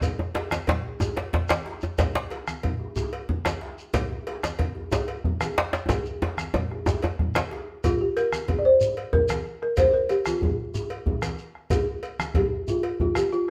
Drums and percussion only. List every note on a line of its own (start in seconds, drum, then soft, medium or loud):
0.01 bombo low medium
0.01 cowbell medium
0.01 djembe slap soft
0.01 high conga soft
0.01 djembe bass medium
0.01 low conga medium
0.01 shekere medium
0.19 high conga soft
0.19 djembe tone medium
0.34 cowbell soft
0.34 djembe slap medium
0.51 bombo rim medium
0.51 djembe slap medium
0.51 high conga medium
0.51 shekere soft
0.67 bombo low medium
0.67 cowbell soft
0.67 djembe slap loud
0.67 low conga medium
0.84 djembe tone medium
1.00 bombo rim soft
1.00 djembe slap medium
1.00 djembe tone medium
1.00 djembe bass medium
1.00 shekere medium
1.16 cowbell soft
1.16 djembe slap soft
1.16 djembe slap medium
1.33 bombo low medium
1.33 djembe slap medium
1.33 low conga medium
1.49 bombo rim medium
1.49 cowbell soft
1.49 djembe slap loud
1.49 djembe tone medium
1.49 high conga medium
1.49 shekere soft
1.66 djembe slap medium
1.81 djembe slap soft
1.81 djembe tone medium
1.81 shekere soft
1.98 bombo low medium
1.98 cowbell medium
1.98 djembe slap soft
1.98 djembe slap medium
1.98 high conga soft
1.98 low conga medium
1.98 djembe bass medium
1.98 shekere medium
2.14 djembe slap medium
2.14 djembe tone medium
2.14 high conga soft
2.30 cowbell soft
2.30 djembe slap medium
2.48 bombo rim medium
2.48 high conga medium
2.48 shekere soft
2.63 bombo low medium
2.63 cowbell soft
2.63 low conga medium
2.79 djembe tone medium
2.96 bombo rim soft
2.96 djembe slap medium
2.96 djembe bass medium
2.96 shekere medium
3.12 cowbell soft
3.12 djembe slap soft
3.29 bombo low medium
3.29 low conga medium
3.45 bombo rim medium
3.45 cowbell soft
3.45 djembe slap medium
3.45 djembe tone medium
3.45 high conga medium
3.45 shekere soft
3.61 djembe slap medium
3.78 djembe slap soft
3.78 shekere soft
3.94 bombo low medium
3.94 cowbell medium
3.94 djembe slap soft
3.94 djembe slap medium
3.94 high conga soft
3.94 djembe bass medium
3.94 low conga medium
3.94 shekere medium
4.10 djembe tone medium
4.10 high conga soft
4.27 cowbell medium
4.27 djembe slap medium
4.43 bombo rim medium
4.43 djembe slap medium
4.43 high conga soft
4.43 shekere soft
4.59 bombo low medium
4.59 cowbell medium
4.59 low conga medium
4.75 djembe tone medium
4.92 bombo rim soft
4.92 djembe slap medium
4.92 djembe bass medium
4.92 shekere medium
5.08 cowbell soft
5.08 djembe slap soft
5.24 bombo low medium
5.24 low conga medium
5.41 bombo rim medium
5.41 cowbell soft
5.41 high conga medium
5.41 djembe tone medium
5.41 shekere soft
5.58 djembe slap medium
5.58 djembe slap loud
5.73 djembe slap medium
5.73 djembe slap soft
5.73 shekere soft
5.89 bombo rim soft
5.89 bombo low medium
5.89 cowbell medium
5.89 djembe tone loud
5.89 low conga medium
5.89 djembe bass medium
5.89 shekere medium
6.06 high conga soft
6.06 djembe tone medium
6.06 shekere soft
6.22 cowbell soft
6.22 djembe slap medium
6.22 djembe tone loud
6.37 bombo rim medium
6.37 djembe slap soft
6.37 high conga medium
6.37 shekere soft
6.54 bombo rim soft
6.54 bombo low loud
6.54 cowbell soft
6.54 djembe tone loud
6.54 low conga medium
6.71 bombo rim soft
6.71 djembe tone medium
6.86 djembe slap medium
6.86 djembe tone loud
6.86 high conga soft
6.86 djembe bass medium
6.86 shekere medium
7.02 bombo rim soft
7.02 cowbell medium
7.02 djembe tone medium
7.02 shekere soft
7.19 bombo rim soft
7.19 bombo low medium
7.19 low conga medium
7.35 bombo rim medium
7.35 cowbell medium
7.35 djembe slap loud
7.35 high conga medium
7.35 djembe tone medium
7.35 shekere soft
7.51 bombo rim soft
7.51 djembe slap medium
7.68 djembe slap soft
7.84 bombo low medium
7.84 cowbell medium
7.84 djembe tone medium
7.84 low conga medium
7.84 djembe bass medium
7.84 shekere soft
8.17 cowbell soft
8.17 djembe slap soft
8.17 shekere soft
8.32 bombo rim medium
8.32 djembe slap medium
8.32 high conga soft
8.32 shekere soft
8.48 bombo low medium
8.48 cowbell soft
8.48 low conga medium
8.48 djembe bass medium
8.66 djembe slap soft
8.81 djembe tone medium
8.81 shekere medium
8.97 cowbell soft
9.13 bombo low medium
9.13 djembe slap soft
9.13 djembe bass medium
9.13 low conga medium
9.29 bombo rim medium
9.29 cowbell medium
9.29 djembe slap medium
9.29 high conga medium
9.29 shekere soft
9.46 high conga soft
9.62 bombo rim soft
9.77 bombo low medium
9.77 cowbell medium
9.77 djembe tone medium
9.77 djembe bass medium
9.77 low conga medium
9.77 shekere medium
10.09 cowbell medium
10.09 djembe slap soft
10.09 shekere soft
10.25 bombo rim medium
10.25 djembe slap medium
10.25 high conga medium
10.25 shekere soft
10.41 bombo low medium
10.41 djembe bass medium
10.41 low conga medium
10.57 djembe slap soft
10.74 djembe tone medium
10.74 shekere medium
10.90 cowbell soft
11.06 bombo low medium
11.06 djembe slap soft
11.06 djembe bass medium
11.06 low conga medium
11.22 bombo rim medium
11.22 cowbell medium
11.22 djembe slap medium
11.22 high conga medium
11.22 shekere soft
11.38 high conga soft
11.38 shekere soft
11.55 bombo rim soft
11.70 bombo low medium
11.70 cowbell medium
11.70 djembe tone medium
11.70 low conga medium
11.70 djembe bass medium
11.70 shekere medium
12.03 cowbell soft
12.03 shekere soft
12.19 bombo rim medium
12.19 djembe slap medium
12.19 high conga medium
12.19 shekere soft
12.34 bombo low medium
12.34 cowbell soft
12.34 djembe bass medium
12.34 low conga medium
12.52 djembe slap soft
12.68 djembe tone medium
12.68 shekere medium
12.83 cowbell soft
13.00 bombo low medium
13.00 djembe bass medium
13.00 low conga medium
13.15 bombo rim medium
13.15 cowbell soft
13.15 djembe slap medium
13.15 high conga soft
13.15 shekere soft
13.32 high conga soft
13.32 shekere soft